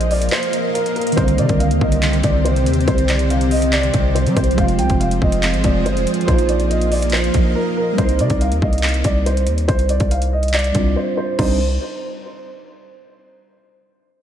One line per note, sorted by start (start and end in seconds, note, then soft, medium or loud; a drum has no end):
0.00 0.29 A#1 loud
0.00 1.16 A#3 medium
0.00 1.16 A#4 medium
0.00 1.16 D#5 medium
0.00 1.16 F5 medium
0.00 closed hi-hat medium
0.11 0.28 D5 medium
0.11 open hi-hat medium
0.22 closed hi-hat medium
0.29 0.72 C5 medium
0.29 clap loud
0.29 closed hi-hat medium
0.36 closed hi-hat soft
0.43 closed hi-hat medium
0.53 closed hi-hat medium
0.74 0.91 A#4 medium
0.74 closed hi-hat medium
0.86 closed hi-hat medium
0.96 1.13 A#4 medium
0.96 closed hi-hat soft
1.01 closed hi-hat medium
1.07 closed hi-hat medium
1.12 4.51 D#3 medium
1.12 4.53 G3 medium
1.12 closed hi-hat medium
1.17 1.40 C2 loud
1.17 4.54 C3 medium
1.17 4.54 C4 medium
1.17 4.55 C4 medium
1.17 4.54 G4 medium
1.17 1.34 C5 loud
1.17 4.55 C5 medium
1.17 kick loud
1.17 closed hi-hat medium
1.22 4.56 D3 medium
1.28 closed hi-hat medium
1.38 1.49 C3 loud
1.38 1.55 D5 medium
1.38 closed hi-hat medium
1.49 1.72 C2 loud
1.49 kick medium
1.49 closed hi-hat medium
1.60 1.77 F5 medium
1.60 closed hi-hat medium
1.71 1.81 D#2 loud
1.71 closed hi-hat medium
1.81 2.22 C2 loud
1.81 2.21 D#5 medium
1.81 kick loud
1.92 closed hi-hat medium
2.03 clap loud
2.03 closed hi-hat medium
2.13 closed hi-hat medium
2.23 2.68 C2 loud
2.23 2.40 D5 medium
2.23 kick medium
2.23 closed hi-hat loud
2.45 2.62 C5 medium
2.45 closed hi-hat medium
2.56 closed hi-hat medium
2.66 2.87 D#2 loud
2.66 closed hi-hat medium
2.73 closed hi-hat medium
2.81 closed hi-hat soft
2.88 3.90 C2 loud
2.88 3.04 C5 loud
2.88 kick loud
2.88 closed hi-hat medium
2.98 closed hi-hat medium
3.08 3.26 D5 medium
3.08 clap medium
3.08 closed hi-hat medium
3.19 closed hi-hat medium
3.30 3.47 F5 medium
3.30 closed hi-hat medium
3.41 closed hi-hat medium
3.51 3.68 D#5 medium
3.51 open hi-hat medium
3.62 closed hi-hat medium
3.73 4.13 D5 loud
3.73 clap loud
3.73 closed hi-hat medium
3.83 closed hi-hat medium
3.94 4.27 C2 loud
3.94 kick medium
3.94 closed hi-hat medium
4.15 4.32 C5 medium
4.15 closed hi-hat medium
4.26 4.36 G3 loud
4.26 closed hi-hat medium
4.37 4.57 C2 loud
4.37 4.53 C5 medium
4.37 kick loud
4.37 closed hi-hat medium
4.44 closed hi-hat medium
4.51 5.60 F3 medium
4.51 closed hi-hat soft
4.57 4.81 F1 loud
4.57 6.26 F3 medium
4.57 5.62 G#3 medium
4.57 5.63 C4 medium
4.57 6.26 F4 medium
4.57 6.26 G#4 medium
4.57 6.26 C5 medium
4.57 4.75 F5 medium
4.57 kick loud
4.57 closed hi-hat medium
4.64 5.65 F4 medium
4.68 closed hi-hat medium
4.79 4.89 C2 loud
4.79 4.96 G5 medium
4.79 closed hi-hat medium
4.90 5.20 F1 loud
4.90 kick medium
4.90 closed hi-hat medium
5.00 5.17 F5 medium
5.00 closed hi-hat medium
5.11 closed hi-hat medium
5.22 5.55 F1 loud
5.22 5.62 D#5 medium
5.22 kick loud
5.32 closed hi-hat medium
5.43 clap loud
5.43 closed hi-hat medium
5.54 5.64 G#1 loud
5.54 closed hi-hat medium
5.61 5.87 F1 loud
5.61 6.21 F3 medium
5.61 6.27 G#3 soft
5.61 6.28 C4 soft
5.61 5.81 D5 medium
5.61 kick medium
5.61 closed hi-hat medium
5.66 6.29 F4 medium
5.85 5.98 G1 loud
5.85 6.02 C5 medium
5.85 closed hi-hat medium
5.96 6.06 F1 loud
5.96 closed hi-hat medium
6.07 closed hi-hat medium
6.14 closed hi-hat medium
6.21 7.92 F3 medium
6.21 closed hi-hat soft
6.26 7.30 A#1 loud
6.26 7.94 A#3 medium
6.26 7.97 A#3 medium
6.26 7.96 D#4 medium
6.26 7.97 A#4 medium
6.26 6.45 C5 loud
6.26 7.97 D#5 medium
6.26 7.97 F5 medium
6.26 kick loud
6.26 closed hi-hat medium
6.33 7.97 F4 medium
6.38 closed hi-hat medium
6.49 6.66 D5 medium
6.49 closed hi-hat medium
6.60 closed hi-hat medium
6.70 6.87 D#5 medium
6.70 closed hi-hat medium
6.81 closed hi-hat medium
6.92 7.09 D5 medium
6.92 open hi-hat medium
7.02 closed hi-hat medium
7.10 7.53 C5 medium
7.10 clap loud
7.10 closed hi-hat medium
7.17 closed hi-hat soft
7.24 closed hi-hat medium
7.34 7.55 A#1 loud
7.34 kick medium
7.34 closed hi-hat medium
7.55 7.72 A#4 medium
7.77 7.94 A#4 medium
7.93 10.68 G3 medium
7.93 10.70 C4 medium
7.98 8.21 C2 loud
7.98 8.15 C5 medium
7.98 kick loud
7.98 closed hi-hat medium
8.04 10.74 D#4 medium
8.09 closed hi-hat medium
8.19 8.30 C3 loud
8.19 8.37 D5 medium
8.19 closed hi-hat medium
8.30 8.53 C2 loud
8.30 kick medium
8.30 closed hi-hat medium
8.41 8.58 F5 medium
8.41 closed hi-hat medium
8.51 8.62 D#2 loud
8.51 closed hi-hat medium
8.62 9.03 C2 loud
8.62 9.02 D#5 medium
8.62 kick medium
8.73 closed hi-hat soft
8.78 closed hi-hat medium
8.83 clap loud
8.83 closed hi-hat medium
8.89 closed hi-hat medium
8.94 closed hi-hat medium
9.04 9.49 C2 loud
9.04 9.22 D5 medium
9.04 kick medium
9.04 closed hi-hat medium
9.26 9.43 C5 medium
9.26 closed hi-hat medium
9.37 closed hi-hat medium
9.47 9.67 D#2 loud
9.47 closed hi-hat medium
9.58 closed hi-hat medium
9.68 9.99 C2 loud
9.68 9.85 C5 loud
9.68 kick loud
9.68 closed hi-hat medium
9.79 closed hi-hat medium
9.89 10.06 D5 medium
9.89 closed hi-hat medium
10.00 10.72 C2 loud
10.00 kick medium
10.00 closed hi-hat medium
10.11 10.28 F5 medium
10.11 closed hi-hat medium
10.22 closed hi-hat medium
10.33 10.50 D#5 medium
10.43 closed hi-hat soft
10.48 closed hi-hat medium
10.54 10.94 D5 medium
10.54 clap loud
10.54 closed hi-hat medium
10.59 closed hi-hat medium
10.64 closed hi-hat medium
10.72 10.96 C2 loud
10.72 11.37 G3 soft
10.72 11.37 C4 soft
10.72 11.37 D4 soft
10.72 kick medium
10.72 closed hi-hat loud
10.77 11.40 F4 medium
10.96 11.13 C5 medium
11.17 11.34 C5 medium
11.39 11.78 C2 loud
11.39 11.58 G3 medium
11.39 11.58 C4 medium
11.39 11.58 D4 medium
11.39 11.58 D#4 medium
11.39 11.59 C5 medium
11.39 kick loud
11.39 crash medium